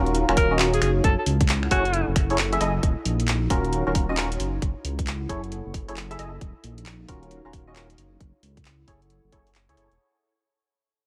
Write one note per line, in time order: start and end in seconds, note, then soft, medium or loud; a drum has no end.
0.00 0.25 D#1 medium
0.00 0.25 C#4 medium
0.00 0.82 D#4 medium
0.00 0.25 F4 medium
0.00 0.25 F#4 medium
0.00 1.65 F#4 medium
0.00 0.25 A#4 loud
0.00 1.65 C#5 loud
0.00 0.82 F5 medium
0.06 closed hi-hat soft
0.15 closed hi-hat medium
0.29 0.35 D#1 medium
0.29 0.48 C#4 medium
0.29 0.48 F4 medium
0.29 0.48 F#4 medium
0.29 0.48 A#4 medium
0.29 finger snap medium
0.37 0.79 D#1 loud
0.37 0.54 A#4 medium
0.37 kick loud
0.37 open hi-hat loud
0.51 0.58 C#4 medium
0.51 0.58 F4 medium
0.51 0.58 F#4 medium
0.51 0.58 D#5 medium
0.59 0.71 C#4 medium
0.59 0.71 F4 medium
0.59 0.71 F#4 medium
0.59 0.71 A#4 medium
0.59 clap loud
0.59 closed hi-hat medium
0.74 0.79 G#4 medium
0.74 closed hi-hat medium
0.81 1.01 F#1 loud
0.81 2.83 E4 medium
0.81 0.91 G#4 medium
0.81 finger snap medium
0.81 open hi-hat loud
1.04 1.16 F#1 loud
1.04 1.13 A4 medium
1.04 kick loud
1.04 closed hi-hat medium
1.18 1.24 A4 medium
1.24 1.69 C#2 medium
1.24 2.83 F#5 medium
1.24 open hi-hat loud
1.28 2.83 A4 medium
1.41 kick loud
1.41 closed hi-hat medium
1.49 clap loud
1.49 closed hi-hat medium
1.63 finger snap soft
1.71 2.04 F#1 medium
1.71 1.83 E4 medium
1.71 2.08 F#4 medium
1.71 1.83 G#4 medium
1.71 1.83 A4 medium
1.71 1.83 C#5 loud
1.71 kick medium
1.71 open hi-hat loud
1.85 closed hi-hat soft
1.93 closed hi-hat medium
2.08 2.14 F#1 medium
2.16 2.58 F#1 loud
2.16 finger snap medium
2.16 kick loud
2.16 open hi-hat loud
2.30 2.37 E4 medium
2.30 2.37 G#4 medium
2.30 2.37 A4 medium
2.30 2.37 C#5 medium
2.30 open hi-hat medium
2.38 clap loud
2.38 closed hi-hat medium
2.53 2.59 E4 medium
2.53 2.59 G#4 medium
2.53 2.59 A4 medium
2.53 2.59 E5 loud
2.53 closed hi-hat medium
2.61 2.80 F#1 loud
2.61 2.73 E4 loud
2.61 2.73 G#4 medium
2.61 2.73 A4 medium
2.61 2.73 D#5 loud
2.61 open hi-hat loud
2.83 2.95 D#1 loud
2.83 4.40 D#4 medium
2.83 kick loud
2.83 closed hi-hat medium
2.99 5.23 F#4 medium
3.05 3.48 A#1 medium
3.05 open hi-hat loud
3.20 closed hi-hat medium
3.28 clap loud
3.28 closed hi-hat medium
3.36 4.40 F5 medium
3.50 3.83 D#1 loud
3.50 3.83 C#4 loud
3.50 3.83 F4 medium
3.50 3.83 F#4 medium
3.50 3.83 A#4 loud
3.50 5.23 C#5 medium
3.50 kick loud
3.50 open hi-hat loud
3.65 closed hi-hat soft
3.73 closed hi-hat medium
3.87 3.94 D#1 medium
3.87 4.06 C#4 medium
3.87 4.06 F4 medium
3.87 4.06 F#4 medium
3.87 4.06 A#4 medium
3.95 4.37 D#1 medium
3.95 kick loud
3.95 open hi-hat loud
4.09 4.16 C#4 medium
4.09 4.16 F4 medium
4.09 4.16 F#4 medium
4.09 4.16 D#5 medium
4.17 4.29 C#4 medium
4.17 4.29 F4 medium
4.17 4.29 F#4 medium
4.17 4.29 A#4 medium
4.17 clap loud
4.17 closed hi-hat medium
4.32 closed hi-hat medium
4.40 4.59 F#1 loud
4.40 6.41 E4 medium
4.40 open hi-hat loud
4.62 4.74 F#1 loud
4.62 kick loud
4.62 closed hi-hat medium
4.84 5.27 C#2 medium
4.84 6.41 A4 medium
4.84 open hi-hat loud
4.93 6.41 F#5 medium
4.99 kick loud
4.99 closed hi-hat medium
5.07 clap loud
5.07 closed hi-hat medium
5.29 5.62 F#1 loud
5.29 5.41 E4 medium
5.29 5.41 G#4 medium
5.29 5.41 A4 medium
5.29 5.41 C#5 loud
5.29 kick medium
5.29 open hi-hat loud
5.44 closed hi-hat soft
5.52 closed hi-hat medium
5.66 5.73 F#1 medium
5.74 6.17 F#1 medium
5.74 kick loud
5.74 open hi-hat loud
5.88 5.95 E4 medium
5.88 5.95 G#4 medium
5.88 5.95 A4 medium
5.88 5.95 C#5 medium
5.88 open hi-hat medium
5.97 clap loud
5.97 closed hi-hat medium
6.11 6.18 E4 medium
6.11 6.18 G#4 medium
6.11 6.18 A4 medium
6.11 6.18 E5 loud
6.11 closed hi-hat medium
6.19 6.38 F#1 loud
6.19 6.31 E4 medium
6.19 6.31 G#4 medium
6.19 6.31 A4 medium
6.19 6.31 D#5 loud
6.19 open hi-hat loud
6.41 6.53 D#1 medium
6.41 7.98 D#4 medium
6.41 kick loud
6.41 closed hi-hat medium
6.64 7.06 A#1 medium
6.64 open hi-hat loud
6.76 8.81 F#4 medium
6.76 7.98 F5 medium
6.76 closed hi-hat medium
6.86 clap loud
6.86 closed hi-hat medium
6.91 8.77 C#5 medium
7.08 7.41 D#1 medium
7.08 7.42 C#4 loud
7.08 7.42 F4 medium
7.08 7.42 F#4 medium
7.08 7.42 A#4 loud
7.08 kick loud
7.08 open hi-hat loud
7.23 closed hi-hat soft
7.31 closed hi-hat medium
7.45 7.52 D#1 medium
7.45 7.64 C#4 medium
7.45 7.64 F4 medium
7.45 7.64 F#4 medium
7.45 7.64 A#4 medium
7.53 7.96 D#1 medium
7.53 kick loud
7.53 open hi-hat loud
7.67 7.74 C#4 medium
7.67 7.74 F4 medium
7.67 7.74 F#4 medium
7.67 7.74 D#5 medium
7.76 7.88 C#4 medium
7.76 7.88 F4 medium
7.76 7.88 F#4 medium
7.76 7.88 A#4 medium
7.76 clap loud
7.76 closed hi-hat medium
7.90 closed hi-hat medium
7.98 8.18 F#1 loud
7.98 10.00 E4 medium
7.98 open hi-hat loud
8.13 10.00 A4 medium
8.20 8.32 F#1 loud
8.20 kick loud
8.20 closed hi-hat medium
8.43 8.85 C#2 medium
8.43 open hi-hat loud
8.54 10.00 F#5 medium
8.54 kick loud
8.54 closed hi-hat medium
8.65 clap loud
8.65 closed hi-hat medium
8.88 9.20 F#1 medium
8.88 9.00 E4 medium
8.88 9.00 G#4 medium
8.88 9.00 A4 medium
8.88 9.00 C#5 loud
8.88 kick medium
8.88 open hi-hat loud
9.02 closed hi-hat soft
9.10 closed hi-hat medium
9.24 9.31 F#1 medium
9.32 9.68 F#1 medium
9.32 9.49 E4 medium
9.32 9.49 G#4 medium
9.32 9.49 A4 medium
9.32 9.49 C#5 loud
9.32 kick loud
9.32 open hi-hat loud
9.47 open hi-hat medium
9.55 clap loud
9.55 closed hi-hat medium
9.69 9.76 C#2 medium
9.69 9.76 E4 loud
9.69 9.76 G#4 medium
9.69 9.76 A4 medium
9.69 9.76 C#5 loud
9.69 closed hi-hat medium
9.77 9.89 F#1 medium
9.77 9.94 E4 medium
9.77 9.94 G#4 medium
9.77 9.94 A4 medium
9.77 9.94 C#5 loud
9.77 open hi-hat loud
9.91 9.98 E1 medium
9.91 closed hi-hat soft